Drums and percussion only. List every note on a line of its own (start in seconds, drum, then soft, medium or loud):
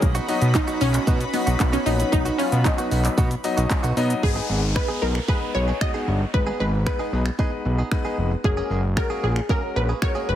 0.02 kick loud
0.02 shaker medium
0.15 closed hi-hat medium
0.15 shaker medium
0.29 open hi-hat medium
0.29 shaker medium
0.42 closed hi-hat medium
0.42 shaker medium
0.55 kick loud
0.55 clap loud
0.55 shaker medium
0.68 closed hi-hat medium
0.68 shaker medium
0.81 open hi-hat medium
0.81 shaker medium
0.94 clap medium
0.94 closed hi-hat medium
0.94 shaker medium
1.07 kick loud
1.07 shaker medium
1.21 closed hi-hat soft
1.21 shaker medium
1.34 open hi-hat medium
1.34 shaker medium
1.47 closed hi-hat medium
1.47 shaker medium
1.60 kick loud
1.60 clap loud
1.60 shaker medium
1.73 closed hi-hat medium
1.73 shaker medium
1.86 open hi-hat medium
1.86 shaker medium
2.00 closed hi-hat medium
2.00 shaker medium
2.13 kick loud
2.13 shaker medium
2.26 closed hi-hat medium
2.26 shaker medium
2.39 open hi-hat medium
2.39 shaker medium
2.52 closed hi-hat medium
2.52 shaker medium
2.65 kick loud
2.65 clap loud
2.65 shaker medium
2.78 closed hi-hat medium
2.78 shaker medium
2.91 open hi-hat medium
2.91 shaker medium
3.04 clap medium
3.04 closed hi-hat medium
3.04 shaker medium
3.18 kick loud
3.18 shaker medium
3.31 closed hi-hat soft
3.31 shaker soft
3.44 open hi-hat medium
3.44 shaker medium
3.58 closed hi-hat medium
3.58 shaker medium
3.70 kick loud
3.70 clap loud
3.70 shaker medium
3.84 closed hi-hat medium
3.84 shaker medium
3.97 open hi-hat medium
3.97 shaker medium
4.10 closed hi-hat medium
4.10 shaker medium
4.23 kick loud
4.76 finger snap medium
4.76 kick loud
5.15 finger snap medium
5.28 kick loud
5.81 finger snap loud
5.81 kick loud
6.34 kick loud
6.86 finger snap medium
6.86 kick loud
7.26 finger snap medium
7.39 kick loud
7.92 finger snap loud
7.92 kick loud
8.44 kick loud
8.97 finger snap medium
8.97 kick loud
9.36 finger snap medium
9.49 kick loud
10.02 finger snap loud
10.02 kick loud